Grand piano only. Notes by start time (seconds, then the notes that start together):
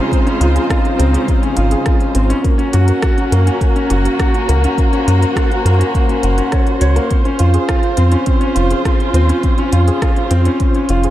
Already playing: C4 C#4 F4 G#4
0.12 C4
0.26 C#4
0.41 F4
0.56 G#4
0.70 F4
0.85 C#4
0.98 C4
1.13 C#4
1.29 C4
1.43 C#4
1.57 F4
1.72 G#4
1.86 F4
2.01 C#4
2.15 C4
2.30 C#4
2.44 A#3
2.58 C#4
2.73 F#4
2.89 A#4
3.03 F#4
3.18 C#4
3.32 A#3
3.47 C#4
3.61 A#3
3.76 C#4
3.90 F#4
4.05 A#4
4.19 F#4
4.34 C#4
4.49 A#3
4.64 C#4
4.79 A#3
4.93 C#4
5.07 F#4
5.22 A#4
5.36 F#4
5.50 C#4
5.65 A#3
5.79 C#4
5.94 A#3
6.09 C#4
6.24 F#5
6.38 C#4
6.52 C#5
6.67 F#4
6.82 C#5
6.96 A#3
7.10 C4
7.25 C#4
7.39 F4
7.54 G#4
7.68 F4
7.83 C#4
7.97 C4
8.12 C#4
8.26 C4
8.41 C#4
8.55 F4
8.71 G#4
8.86 F4
9.00 C#4
9.14 C4
9.29 C#4
9.44 C4
9.58 C#4
9.73 F4
9.88 G#4
10.02 F4
10.17 C#4
10.31 C4
10.46 C#4
10.60 C4
10.75 C#4
10.90 F4
11.04 G#4